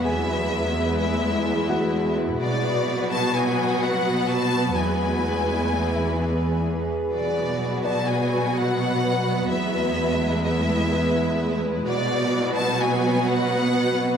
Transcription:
<<
  \new Staff \with { instrumentName = "Violin section" } { \time 5/4 \key b \dorian \tempo 4 = 127 e''2 e''2~ e''8 r8 | d''4. a''8 gis''4 fis''4 a''4 | gis''1 r4 | d''4. a''8 gis''4 fis''2 |
e''2 e''2~ e''8 r8 | d''4. a''8 gis''4 fis''2 | }
  \new Staff \with { instrumentName = "Grand piano" } { \time 5/4 \key b \dorian <gis' gis''>2. r8 <fis' fis''>4.~ | <fis' fis''>4. r2. r8 | r2 r8 e''2~ e''8~ | e''8 r4 d''2. r8 |
r2. b'2~ | b'4 r1 | }
  \new Staff \with { instrumentName = "Violin section" } { \time 5/4 \key b \dorian << { b'1~ b'4 | b'1~ b'4~ | b'1~ b'8 r8 | b'1~ b'4~ |
b'1~ b'4 | b'1~ b'4 | } \\ { e'1~ e'4 | fis'1~ fis'4 | e'1~ e'8 r8 | fis'1~ fis'4 |
e'1~ e'4 | fis'1~ fis'4 | } >> }
  \new Staff \with { instrumentName = "Ambient pad" } { \time 5/4 \key b \dorian << { <b b'>1~ <b b'>4 | <b b'>1~ <b b'>4~ | <b b'>1~ <b b'>4 | <b b'>1~ <b b'>4~ |
<b b'>1~ <b b'>4 | <b b'>1~ <b b'>4 | } \\ { <gis e'>1~ <gis e'>4 | <fis fis'>1~ <fis fis'>4 | <e gis'>1~ <e gis'>4 | <fis fis'>1~ <fis fis'>4 |
<gis e'>1~ <gis e'>4 | <fis fis'>1~ <fis fis'>4 | } >> }
  \new Staff \with { instrumentName = "Viola section" } { \clef bass \time 5/4 \key b \dorian << { b1~ b4 | b1~ b4~ | b1~ b8 r8 | b1~ b4~ |
b1~ b4 | b1~ b4 | } \\ { gis1~ gis4 | fis1~ fis4 | gis1~ gis8 r8 | fis1~ fis4 |
gis1~ gis4 | fis1~ fis4 | } >> }
  \new Staff \with { instrumentName = "Cello section" } { \clef bass \time 5/4 \key b \dorian e,1~ e,4 | b,1~ b,4 | e,1~ e,8 r8 | b,1~ b,4 |
e,1~ e,4 | b,1~ b,4 | }
>>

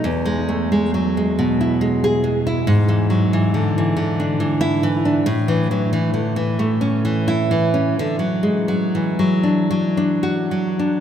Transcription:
\new Staff \with { instrumentName = "Nylon-string guitar" } { \clef bass \time 6/8 \key e \major \tempo 4. = 45 << { r2 r16 gis'8 r16 | \key a \major r2 r16 e'8 r16 | r2 r16 e'8 r16 | r2 r16 fis'8 r16 | } \\ { e,16 gis16 a16 gis16 fis16 gis16 b,16 e'16 gis8 gis16 e'16 | gis,16 e16 fis16 e16 d16 e16 d16 d'16 e8 e16 d'16 | a,16 e16 fis16 e16 d16 e16 a16 cis'16 e8 e16 cis'16 | d16 fis16 gis16 fis16 e16 fis16 d'16 fis16 d'8 fis16 d'16 | } >> }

